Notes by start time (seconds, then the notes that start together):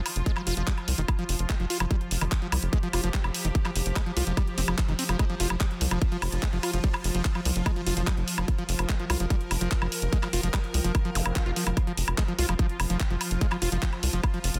Already playing: F3 F4 C5 F5
0.06 open hi-hat, high woodblock
0.16 F1, closed hi-hat
0.26 G#3, kick, closed hi-hat
0.36 F3, clap, closed hi-hat, high woodblock
0.47 F1 F4, open hi-hat
0.57 F1 F3, closed hi-hat
0.67 G3, kick, clap, closed hi-hat
0.78 closed hi-hat, high woodblock
0.88 C2, open hi-hat
0.98 F1 D#3, closed hi-hat
1.08 kick, closed hi-hat, high woodblock
1.19 F3, closed hi-hat
1.29 F1, open hi-hat
1.39 F1, closed hi-hat
1.50 G#3, kick, clap, closed hi-hat, high woodblock
1.60 F1 F3, closed hi-hat
1.70 F4, open hi-hat
1.80 F1 F3, closed hi-hat, high woodblock
1.91 G3 G4, kick, closed hi-hat
1.97 A#5, closed hi-hat
2.11 F1, open hi-hat
2.21 F1 D#3, closed hi-hat, high woodblock
2.32 kick, clap, closed hi-hat
2.42 F3, closed hi-hat
2.52 C2, open hi-hat, high woodblock
2.63 F1, closed hi-hat
2.73 G#3, kick, closed hi-hat
2.83 F3, closed hi-hat
2.93 F1 F4, open hi-hat, high woodblock
3.04 F1 F3, closed hi-hat
3.14 G3, kick, clap, closed hi-hat
3.24 F1, closed hi-hat, high woodblock
3.34 open hi-hat
3.45 F1 D#3, closed hi-hat
3.55 kick, closed hi-hat
3.65 F3, clap, closed hi-hat, high woodblock
3.76 F1, open hi-hat
3.86 F1, closed hi-hat
3.96 G#3, kick, clap, closed hi-hat, high woodblock
4.06 F3, closed hi-hat
4.17 C2 F4, open hi-hat
4.27 F1 F3, closed hi-hat
4.37 G3, kick, closed hi-hat, high woodblock
4.47 closed hi-hat
4.58 F1 C4, open hi-hat
4.68 F1 F3, closed hi-hat, high woodblock
4.78 kick, clap, closed hi-hat
4.89 F1 D#3, closed hi-hat
4.99 C4, open hi-hat
5.09 F1 F3, closed hi-hat, high woodblock
5.19 G#3 F4, kick, closed hi-hat, high woodblock
5.26 F3 F5, closed hi-hat
5.40 F1 F4, open hi-hat
5.50 F1 F3, closed hi-hat, high woodblock
5.60 G3, kick, clap, closed hi-hat
5.71 closed hi-hat
5.81 C2, open hi-hat
5.91 F1 F3, closed hi-hat, high woodblock
6.02 kick, closed hi-hat
6.12 F3, closed hi-hat
6.22 F1, open hi-hat, high woodblock
6.32 F1, closed hi-hat
6.43 G#3, kick, clap, closed hi-hat
6.53 F1 F3, closed hi-hat
6.63 F4, open hi-hat, high woodblock
6.73 F1 F3, closed hi-hat
6.84 G3, kick, closed hi-hat
6.94 clap, closed hi-hat, high woodblock
7.04 F1, open hi-hat
7.15 F1 F3, closed hi-hat
7.25 kick, clap, closed hi-hat
7.35 F3, closed hi-hat, high woodblock
7.45 C2, open hi-hat
7.56 F1, closed hi-hat
7.66 G#3, kick, closed hi-hat, high woodblock
7.76 F3, closed hi-hat
7.87 F1 F4, open hi-hat
7.97 F1 F3, closed hi-hat
8.07 G3, kick, clap, closed hi-hat, high woodblock
8.17 F1, closed hi-hat
8.28 open hi-hat
8.38 F1 F3, high woodblock
8.48 A#4, kick, closed hi-hat
8.55 F3 G5, closed hi-hat
8.69 F1, open hi-hat
8.79 F1, closed hi-hat, high woodblock
8.89 G#3, kick, clap, closed hi-hat
9.00 F3, closed hi-hat
9.10 C2 F4, open hi-hat, high woodblock
9.20 F1 F3, closed hi-hat
9.30 G3, kick, closed hi-hat
9.41 closed hi-hat
9.51 F1, open hi-hat, high woodblock
9.61 F1 F3, closed hi-hat
9.71 kick, clap, closed hi-hat
9.82 F1 F3, closed hi-hat, high woodblock
9.92 open hi-hat
10.02 F1, closed hi-hat
10.13 G#3, kick, closed hi-hat
10.23 F3, clap, closed hi-hat, high woodblock
10.33 F1 F4, open hi-hat
10.43 F1 F3, closed hi-hat
10.54 G3, kick, clap, closed hi-hat, high woodblock
10.64 closed hi-hat
10.74 C2, open hi-hat
10.84 F1 F3, closed hi-hat
10.95 kick, closed hi-hat, swell, high woodblock
11.05 F3, closed hi-hat
11.15 F1, open hi-hat, zap
11.26 F1, closed hi-hat, high woodblock
11.36 F3, kick, clap, closed hi-hat
11.46 F1 F4, closed hi-hat
11.56 F3, open hi-hat
11.67 F1 F3, closed hi-hat, high woodblock
11.77 F3 F4, kick, closed hi-hat, high woodblock
11.84 F3 F5, closed hi-hat
11.97 F1, open hi-hat
12.08 F1, closed hi-hat, high woodblock
12.18 G#3, kick, clap, closed hi-hat
12.28 F3, closed hi-hat
12.39 C2 F4, open hi-hat
12.49 F1 F3, closed hi-hat, high woodblock
12.59 F3, kick, closed hi-hat
12.69 closed hi-hat
12.80 F1, open hi-hat, high woodblock
12.90 F1 F3, closed hi-hat
13.00 kick, clap, closed hi-hat
13.10 F1 F3, closed hi-hat
13.21 open hi-hat, high woodblock
13.31 F1, closed hi-hat
13.41 G#3, kick, closed hi-hat
13.52 F3, clap, closed hi-hat, high woodblock
13.62 F1 F4, open hi-hat
13.72 F1 F3, closed hi-hat
13.82 F3, kick, clap, closed hi-hat
13.93 closed hi-hat, high woodblock
14.03 C2, open hi-hat
14.13 F1 F3, closed hi-hat
14.24 kick, closed hi-hat, high woodblock
14.34 F3, closed hi-hat
14.44 F1, open hi-hat
14.54 F1, closed hi-hat